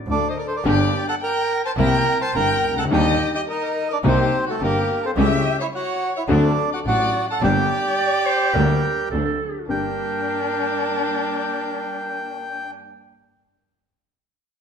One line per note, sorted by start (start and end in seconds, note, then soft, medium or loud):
0.06 0.31 D2 medium
0.06 0.32 D2 medium
0.06 0.32 D3 medium
0.06 0.28 A4 medium
0.10 0.28 D4 medium
0.10 0.28 D5 medium
0.29 0.37 C5 medium
0.29 0.38 D#5 medium
0.38 0.46 A#4 medium
0.38 0.47 D5 medium
0.47 0.55 A4 medium
0.47 0.56 C5 medium
0.56 0.65 A#4 medium
0.56 0.65 D5 medium
0.64 0.88 G1 loud
0.64 0.89 G1 medium
0.64 0.89 G2 medium
0.64 0.89 D3 medium
0.64 0.89 G3 medium
0.64 0.88 A#3 medium
0.64 0.89 A#3 medium
0.64 0.88 D4 medium
0.64 0.88 G4 medium
0.64 0.89 G4 medium
0.64 1.05 D5 medium
0.68 1.06 G4 medium
0.68 1.06 G5 medium
1.09 1.15 A4 medium
1.09 1.15 F#5 medium
1.09 1.15 A5 loud
1.21 1.62 A#4 medium
1.21 1.61 G5 medium
1.21 1.62 A#5 loud
1.65 1.72 C5 medium
1.65 1.71 A5 medium
1.65 1.72 C6 loud
1.76 2.01 C2 loud
1.76 2.02 C2 loud
1.76 2.02 C3 medium
1.76 2.02 G3 medium
1.76 2.02 A#3 medium
1.76 2.02 C4 medium
1.76 2.02 E4 medium
1.76 2.18 A#4 medium
1.76 2.18 G5 medium
1.76 2.22 A#5 loud
2.22 2.34 C5 medium
2.22 2.34 A5 medium
2.22 2.34 C6 loud
2.34 2.58 G1 medium
2.34 2.59 G2 medium
2.34 2.58 A#3 soft
2.34 2.58 C4 soft
2.34 2.58 E4 medium
2.34 2.75 A#4 medium
2.34 2.75 G5 loud
2.34 2.79 A#5 loud
2.62 2.90 C#2 medium
2.71 2.77 C2 soft
2.77 2.84 C#2 medium
2.77 2.85 A4 medium
2.77 2.84 F#5 medium
2.77 2.85 A5 loud
2.85 2.91 D2 medium
2.91 3.15 D#2 medium
2.91 3.15 D#2 loud
2.91 3.15 D3 medium
2.91 3.15 D#3 loud
2.91 3.14 G3 medium
2.91 3.15 G3 medium
2.91 3.15 A#3 medium
2.91 3.15 D4 medium
2.91 3.15 D#4 medium
2.91 3.32 G4 medium
2.91 3.31 D#5 loud
2.91 3.32 G5 loud
3.35 3.41 G4 medium
3.35 3.41 D#5 medium
3.35 3.41 G5 medium
3.48 3.89 D#4 medium
3.48 3.87 A#4 medium
3.48 3.92 D#5 medium
3.90 3.98 D4 medium
3.90 3.96 A#4 medium
3.90 3.98 D5 medium
4.04 4.27 C2 loud
4.04 4.28 C2 loud
4.04 4.28 C3 loud
4.04 4.27 G3 medium
4.04 4.28 A#3 medium
4.04 4.28 C4 medium
4.04 4.45 C4 medium
4.04 4.28 D#4 medium
4.04 4.43 G4 medium
4.04 4.45 C5 medium
4.47 4.61 A3 medium
4.47 4.59 F#4 medium
4.47 4.62 A4 medium
4.60 4.84 G1 medium
4.60 4.84 G2 medium
4.60 4.84 A#3 medium
4.60 4.84 C4 soft
4.60 4.84 D#4 medium
4.60 5.00 G4 medium
4.60 5.05 A#4 loud
4.64 5.02 A#3 medium
5.03 5.12 C4 medium
5.03 5.09 A4 medium
5.03 5.11 C5 medium
5.16 5.40 C#2 loud
5.16 5.40 C#3 loud
5.16 5.40 G3 medium
5.16 5.40 A3 medium
5.16 5.40 C#4 medium
5.16 5.41 E4 medium
5.16 5.57 G4 medium
5.16 5.56 E5 loud
5.16 5.57 G5 loud
5.60 5.67 E4 medium
5.60 5.66 C#5 medium
5.60 5.67 E5 medium
5.73 6.13 F#4 medium
5.73 6.12 C#5 medium
5.73 6.13 F#5 loud
6.16 6.24 E4 medium
6.16 6.22 C#5 medium
6.16 6.23 E5 medium
6.28 6.52 D2 loud
6.28 6.52 D2 medium
6.28 6.52 D3 loud
6.28 6.52 F#3 medium
6.28 6.52 A3 medium
6.28 6.52 C4 medium
6.28 6.53 D4 medium
6.28 6.53 F#4 loud
6.28 6.68 A4 medium
6.32 6.70 D4 medium
6.32 6.70 D5 medium
6.72 6.80 F#4 medium
6.72 6.78 D5 medium
6.72 6.80 F#5 medium
6.85 7.09 A1 medium
6.85 7.09 A2 medium
6.85 7.09 F#3 medium
6.85 7.09 C4 soft
6.85 7.09 D4 medium
6.85 7.26 F#4 medium
6.85 7.25 D5 medium
6.85 7.26 F#5 loud
7.30 7.43 A4 medium
7.30 7.42 F#5 medium
7.30 7.42 A5 medium
7.41 7.65 G1 loud
7.41 7.66 G1 medium
7.41 7.65 G2 medium
7.41 7.66 D3 medium
7.41 7.65 G3 medium
7.41 7.65 A#3 medium
7.41 7.66 A#3 medium
7.41 7.65 D4 medium
7.41 7.66 G4 medium
7.41 9.09 G4 medium
7.41 9.08 D5 medium
7.41 9.09 G5 loud
7.98 8.27 D5 loud
8.26 8.55 C5 loud
8.54 8.78 D2 medium
8.54 8.79 D2 medium
8.54 8.79 D3 medium
8.54 8.78 G3 medium
8.54 8.79 G3 medium
8.54 8.78 A#3 medium
8.54 8.79 A#3 medium
8.54 8.78 D4 medium
8.54 8.79 G4 medium
8.54 9.10 A#4 medium
9.11 9.35 D2 medium
9.11 9.36 D2 medium
9.11 9.36 D3 medium
9.11 9.35 F#3 soft
9.11 9.35 C4 soft
9.11 9.35 D4 medium
9.11 9.24 A4 medium
9.25 9.65 A4 medium
9.68 9.92 G1 medium
9.68 12.76 G2 medium
9.68 12.70 G3 medium
9.68 12.70 A#3 medium
9.68 12.76 A#3 soft
9.68 12.70 D4 medium
9.68 12.76 D4 medium
9.68 12.76 G4 medium
9.68 12.70 A#4 medium
9.68 12.71 G5 medium